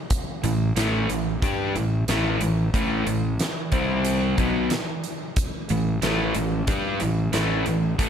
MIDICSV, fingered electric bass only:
0, 0, Header, 1, 2, 480
1, 0, Start_track
1, 0, Key_signature, 0, "minor"
1, 0, Tempo, 657174
1, 77, Time_signature, 4, 2, 24, 8
1, 5910, End_track
2, 0, Start_track
2, 0, Title_t, "Fingered electric bass"
2, 0, Program_c, 0, 33
2, 320, Note_on_c, 0, 33, 79
2, 542, Note_off_c, 0, 33, 0
2, 562, Note_on_c, 0, 33, 96
2, 783, Note_off_c, 0, 33, 0
2, 800, Note_on_c, 0, 33, 74
2, 1022, Note_off_c, 0, 33, 0
2, 1040, Note_on_c, 0, 43, 91
2, 1263, Note_off_c, 0, 43, 0
2, 1281, Note_on_c, 0, 33, 76
2, 1503, Note_off_c, 0, 33, 0
2, 1519, Note_on_c, 0, 33, 93
2, 1742, Note_off_c, 0, 33, 0
2, 1759, Note_on_c, 0, 33, 74
2, 1982, Note_off_c, 0, 33, 0
2, 1999, Note_on_c, 0, 33, 87
2, 2222, Note_off_c, 0, 33, 0
2, 2242, Note_on_c, 0, 33, 84
2, 2464, Note_off_c, 0, 33, 0
2, 2721, Note_on_c, 0, 36, 93
2, 3171, Note_off_c, 0, 36, 0
2, 3202, Note_on_c, 0, 35, 92
2, 3424, Note_off_c, 0, 35, 0
2, 4167, Note_on_c, 0, 33, 81
2, 4386, Note_off_c, 0, 33, 0
2, 4407, Note_on_c, 0, 33, 99
2, 4626, Note_off_c, 0, 33, 0
2, 4645, Note_on_c, 0, 33, 85
2, 4864, Note_off_c, 0, 33, 0
2, 4880, Note_on_c, 0, 43, 86
2, 5102, Note_off_c, 0, 43, 0
2, 5127, Note_on_c, 0, 33, 75
2, 5345, Note_off_c, 0, 33, 0
2, 5361, Note_on_c, 0, 33, 93
2, 5582, Note_off_c, 0, 33, 0
2, 5606, Note_on_c, 0, 33, 75
2, 5824, Note_off_c, 0, 33, 0
2, 5837, Note_on_c, 0, 33, 81
2, 5910, Note_off_c, 0, 33, 0
2, 5910, End_track
0, 0, End_of_file